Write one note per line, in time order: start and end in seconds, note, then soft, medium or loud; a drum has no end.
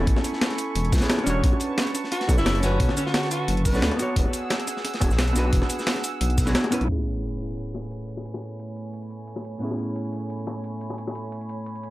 0.00 0.98 B3 medium
0.00 0.99 C#4 medium
0.00 1.00 E4 medium
0.00 1.00 A4 loud
0.00 1.40 A4 medium
0.00 1.40 G#5 medium
0.00 1.40 B5 medium
0.00 4.12 C#6 medium
0.00 high bongo medium
0.07 0.15 A1 loud
0.07 kick loud
0.07 closed hi-hat medium
0.16 snare soft
0.16 high bongo medium
0.24 closed hi-hat medium
0.24 shaker medium
0.33 snare soft
0.41 snare loud
0.41 closed hi-hat medium
0.50 snare medium
0.50 closed hi-hat soft
0.58 closed hi-hat medium
0.58 shaker medium
0.75 0.94 E1 medium
0.75 closed hi-hat medium
0.85 closed hi-hat soft
0.92 1.01 C#2 medium
0.92 kick loud
0.92 snare loud
0.92 closed hi-hat medium
0.92 shaker medium
0.97 1.24 B3 medium
0.97 snare loud
0.97 closed hi-hat medium
1.01 1.23 C#4 medium
1.01 1.25 E4 medium
1.01 1.25 G#4 loud
1.01 snare loud
1.01 closed hi-hat medium
1.01 shaker soft
1.10 snare loud
1.10 closed hi-hat medium
1.18 closed hi-hat soft
1.18 high bongo medium
1.24 1.42 E1 medium
1.24 2.26 C#4 loud
1.24 2.26 D4 medium
1.24 2.27 F#4 medium
1.24 snare soft
1.24 closed hi-hat medium
1.24 shaker medium
1.30 2.28 C#5 loud
1.44 1.52 B1 loud
1.44 4.14 B4 medium
1.44 4.14 A5 medium
1.44 kick loud
1.44 closed hi-hat medium
1.53 high bongo medium
1.60 closed hi-hat medium
1.60 shaker medium
1.78 snare loud
1.78 closed hi-hat loud
1.78 closed hi-hat medium
1.87 closed hi-hat soft
1.95 snare soft
1.95 closed hi-hat medium
1.95 shaker medium
2.04 snare soft
2.12 2.33 F#4 loud
2.12 snare soft
2.12 closed hi-hat medium
2.21 snare medium
2.21 closed hi-hat soft
2.27 2.39 B1 medium
2.27 2.37 C#4 medium
2.27 2.37 D4 medium
2.27 2.38 F#4 medium
2.27 2.38 A4 medium
2.27 kick loud
2.27 closed hi-hat medium
2.27 high bongo medium
2.27 shaker medium
2.38 2.62 F#1 medium
2.38 2.58 E4 loud
2.38 snare soft
2.38 shaker soft
2.46 snare loud
2.46 closed hi-hat medium
2.55 closed hi-hat soft
2.60 2.78 F#1 loud
2.60 3.72 D3 medium
2.60 3.71 C#4 loud
2.60 2.95 C#4 medium
2.60 3.73 F#4 medium
2.60 snare medium
2.60 closed hi-hat medium
2.60 shaker medium
2.66 3.74 B4 loud
2.72 high bongo soft
2.80 2.88 B1 loud
2.80 kick loud
2.80 closed hi-hat loud
2.80 closed hi-hat medium
2.89 snare soft
2.89 high bongo medium
2.97 3.04 C#4 medium
2.97 closed hi-hat medium
2.97 shaker medium
3.06 3.30 F#4 loud
3.06 snare soft
3.14 snare loud
3.14 closed hi-hat loud
3.14 closed hi-hat medium
3.23 snare medium
3.23 closed hi-hat soft
3.31 3.52 F#4 medium
3.31 closed hi-hat medium
3.31 shaker medium
3.48 3.73 F#1 medium
3.48 closed hi-hat medium
3.57 closed hi-hat soft
3.65 3.91 B4 medium
3.65 kick loud
3.65 closed hi-hat medium
3.65 open hi-hat medium
3.65 shaker medium
3.73 3.81 B1 loud
3.73 3.96 C#4 medium
3.73 3.97 D4 medium
3.73 3.98 F#4 medium
3.73 3.98 A4 loud
3.73 snare soft
3.73 shaker soft
3.82 3.90 D2 medium
3.82 snare loud
3.82 closed hi-hat medium
3.82 closed hi-hat loud
3.91 closed hi-hat soft
3.91 high bongo medium
3.96 4.98 B3 loud
3.96 4.00 D4 loud
3.96 5.00 F#4 loud
3.96 snare soft
3.96 closed hi-hat medium
3.96 shaker medium
4.02 5.01 C#5 loud
4.16 4.24 E1 loud
4.16 6.86 G#4 medium
4.16 6.86 F#5 medium
4.16 6.86 E6 medium
4.16 kick loud
4.16 closed hi-hat loud
4.16 closed hi-hat medium
4.26 high bongo soft
4.33 closed hi-hat medium
4.33 shaker medium
4.50 snare loud
4.50 closed hi-hat medium
4.59 closed hi-hat soft
4.67 snare soft
4.67 closed hi-hat medium
4.67 shaker medium
4.77 snare soft
4.85 snare soft
4.85 closed hi-hat loud
4.85 closed hi-hat medium
4.94 snare medium
4.94 closed hi-hat soft
5.00 5.12 E1 medium
5.00 5.10 B3 medium
5.00 5.10 D4 medium
5.00 5.11 F#4 medium
5.00 5.11 G#4 medium
5.00 kick loud
5.00 closed hi-hat medium
5.00 high bongo medium
5.00 shaker medium
5.11 5.34 B1 medium
5.11 snare soft
5.11 shaker soft
5.19 snare loud
5.19 closed hi-hat medium
5.28 closed hi-hat soft
5.33 5.51 B1 loud
5.33 6.43 B3 medium
5.33 6.44 D4 medium
5.33 6.45 F#4 medium
5.33 snare medium
5.33 closed hi-hat medium
5.33 shaker medium
5.39 6.46 B4 loud
5.44 high bongo soft
5.53 5.61 E1 loud
5.53 kick loud
5.53 closed hi-hat medium
5.62 snare soft
5.62 high bongo soft
5.70 closed hi-hat medium
5.70 shaker medium
5.79 snare soft
5.79 shaker soft
5.87 snare loud
5.87 closed hi-hat loud
5.87 closed hi-hat medium
5.96 snare medium
5.96 closed hi-hat soft
6.04 closed hi-hat medium
6.04 shaker medium
6.21 6.46 B1 medium
6.21 closed hi-hat loud
6.21 closed hi-hat medium
6.30 closed hi-hat soft
6.38 kick loud
6.38 closed hi-hat medium
6.38 open hi-hat medium
6.38 shaker medium
6.46 6.54 B1 loud
6.46 6.69 B3 medium
6.46 6.70 D4 medium
6.46 6.70 F#4 medium
6.46 6.71 G#4 loud
6.46 snare soft
6.46 snare medium
6.46 high bongo soft
6.46 shaker soft
6.55 snare loud
6.55 closed hi-hat loud
6.55 closed hi-hat medium
6.64 closed hi-hat soft
6.64 high bongo medium
6.71 6.86 B3 loud
6.71 6.88 C#4 medium
6.71 6.89 E4 loud
6.71 6.87 B4 loud
6.71 snare medium
6.71 closed hi-hat medium
6.71 shaker medium
6.81 6.88 B1 medium
6.81 closed hi-hat soft
6.86 9.58 A2 medium
6.86 11.90 A3 medium
6.86 9.59 B3 medium
6.86 9.60 C#4 medium
6.86 11.90 C#5 medium
6.86 11.90 G#5 medium
6.86 11.90 B5 medium
6.86 closed hi-hat medium
6.86 crash medium
6.86 sub drop medium
6.91 9.61 E4 medium
6.91 9.61 G#4 medium
6.98 high bongo soft
7.06 closed hi-hat medium
7.23 closed hi-hat medium
7.32 closed hi-hat soft
7.40 closed hi-hat medium
7.57 closed hi-hat medium
7.74 closed hi-hat medium
7.74 high bongo medium
7.74 shaker medium
7.83 shaker soft
7.91 closed hi-hat medium
8.08 closed hi-hat medium
8.08 shaker medium
8.17 high bongo soft
8.25 closed hi-hat medium
8.34 high bongo medium
8.42 closed hi-hat medium
8.42 shaker soft
8.59 closed hi-hat medium
8.69 closed hi-hat soft
8.77 closed hi-hat medium
8.77 shaker soft
8.94 closed hi-hat medium
9.03 closed hi-hat soft
9.11 closed hi-hat medium
9.11 shaker soft
9.20 shaker soft
9.28 closed hi-hat medium
9.36 high bongo medium
9.45 closed hi-hat medium
9.45 shaker soft
9.59 11.90 A2 medium
9.59 11.90 B3 medium
9.59 11.90 C#4 medium
9.59 closed hi-hat medium
9.63 11.90 E4 medium
9.63 11.90 G#4 medium
9.71 high bongo medium
9.79 closed hi-hat medium
9.79 shaker soft
9.96 closed hi-hat medium
10.05 closed hi-hat soft
10.13 closed hi-hat medium
10.13 shaker soft
10.30 closed hi-hat medium
10.39 closed hi-hat soft
10.47 closed hi-hat medium
10.47 high bongo medium
10.47 shaker soft
10.56 shaker soft
10.64 closed hi-hat medium
10.81 closed hi-hat medium
10.81 shaker medium
10.90 high bongo soft
10.98 closed hi-hat medium
11.07 high bongo medium
11.15 closed hi-hat medium
11.15 shaker soft
11.32 closed hi-hat medium
11.41 closed hi-hat soft
11.49 closed hi-hat medium
11.49 shaker medium
11.66 closed hi-hat medium
11.75 closed hi-hat soft
11.83 closed hi-hat medium
11.83 shaker soft